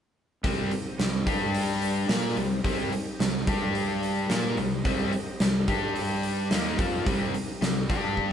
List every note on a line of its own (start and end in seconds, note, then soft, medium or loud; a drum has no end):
0.43 0.70 C2 medium
0.43 0.71 C3 loud
0.43 0.71 G3 loud
0.43 1.26 C4 medium
0.43 0.71 C4 loud
0.43 1.26 D#4 medium
0.43 1.25 G4 medium
0.43 1.26 D#5 medium
0.43 kick medium
0.43 open hi-hat medium
0.71 muted overdriven electric guitar stroke soft
0.71 muted fingered electric bass stroke soft
0.71 muted distorted electric guitar stroke medium
0.71 open hi-hat medium
0.99 1.25 C2 medium
0.99 1.21 C3 medium
0.99 1.22 G3 medium
0.99 snare medium
0.99 open hi-hat medium
1.26 2.06 G2 medium
1.26 2.09 G3 medium
1.26 2.08 D4 medium
1.26 2.09 D4 loud
1.26 2.08 G4 medium
1.26 2.09 G4 loud
1.26 2.08 D5 medium
1.26 kick loud
1.26 open hi-hat medium
1.54 open hi-hat medium
1.82 open hi-hat medium
2.09 2.35 A#2 medium
2.09 2.36 A#3 medium
2.09 3.46 C4 medium
2.09 3.46 D#4 medium
2.09 2.36 F4 medium
2.09 3.46 G4 medium
2.09 2.36 A#4 medium
2.09 3.46 D#5 medium
2.09 snare loud
2.09 open hi-hat medium
2.37 2.63 C2 medium
2.37 2.59 C3 medium
2.37 2.59 G3 medium
2.37 open hi-hat medium
2.64 2.90 C2 medium
2.64 2.91 C3 loud
2.64 2.91 G3 loud
2.64 2.92 C4 loud
2.64 kick loud
2.64 open hi-hat medium
2.92 muted fingered electric bass stroke soft
2.92 muted distorted electric guitar stroke medium
2.92 muted overdriven electric guitar stroke soft
2.92 open hi-hat medium
3.19 3.45 C2 medium
3.19 3.42 C3 medium
3.19 3.43 G3 medium
3.19 snare loud
3.19 open hi-hat medium
3.47 4.26 G2 medium
3.47 4.29 G3 medium
3.47 4.29 D4 medium
3.47 4.30 D4 loud
3.47 4.28 G4 medium
3.47 4.30 G4 loud
3.47 4.29 D5 medium
3.47 kick loud
3.47 open hi-hat medium
3.75 open hi-hat medium
4.03 open hi-hat medium
4.29 4.56 A#2 medium
4.29 4.57 A#3 medium
4.29 5.66 C4 medium
4.29 5.66 D#4 medium
4.29 4.57 F4 medium
4.29 5.66 G4 medium
4.29 4.57 A#4 loud
4.29 5.66 D#5 medium
4.29 snare loud
4.29 open hi-hat medium
4.57 4.83 C2 medium
4.57 4.80 C3 medium
4.57 4.80 G3 medium
4.57 open hi-hat medium
4.85 5.11 C2 medium
4.85 5.12 C3 medium
4.85 5.12 G3 loud
4.85 5.12 C4 loud
4.85 kick loud
4.85 open hi-hat medium
5.12 muted fingered electric bass stroke soft
5.12 muted overdriven electric guitar stroke medium
5.12 muted distorted electric guitar stroke medium
5.12 open hi-hat soft
5.40 5.66 C2 medium
5.40 5.63 C3 medium
5.40 5.63 G3 medium
5.40 snare loud
5.40 open hi-hat medium
5.68 6.47 G2 medium
5.68 6.50 G3 medium
5.68 6.50 D4 medium
5.68 6.50 D4 loud
5.68 6.50 G4 medium
5.68 6.51 G4 loud
5.68 6.50 D5 medium
5.68 kick loud
5.68 open hi-hat medium
5.96 open hi-hat medium
6.23 open hi-hat medium
6.51 6.77 D#2 medium
6.51 6.78 D#3 medium
6.51 6.78 A#3 medium
6.51 7.88 C4 medium
6.51 7.88 D#4 medium
6.51 6.78 D#4 medium
6.51 7.87 G4 medium
6.51 7.88 D#5 medium
6.51 snare loud
6.51 open hi-hat medium
6.79 7.04 F2 medium
6.79 7.06 F3 medium
6.79 7.06 C4 loud
6.79 7.06 F4 loud
6.79 kick loud
6.79 open hi-hat medium
7.06 7.32 C2 medium
7.06 7.33 C3 loud
7.06 7.33 G3 loud
7.06 7.34 C4 loud
7.06 kick loud
7.06 open hi-hat medium
7.34 muted fingered electric bass stroke soft
7.34 muted overdriven electric guitar stroke medium
7.34 muted distorted electric guitar stroke medium
7.34 open hi-hat medium
7.61 7.87 C2 medium
7.61 7.84 C3 medium
7.61 7.84 G3 medium
7.61 snare loud
7.61 open hi-hat medium
7.88 8.32 G2 medium
7.88 8.32 G3 medium
7.88 8.32 D4 medium
7.88 8.32 G4 medium
7.88 8.32 G4 loud
7.88 8.32 D5 medium
7.88 kick loud
7.88 open hi-hat medium
8.17 kick medium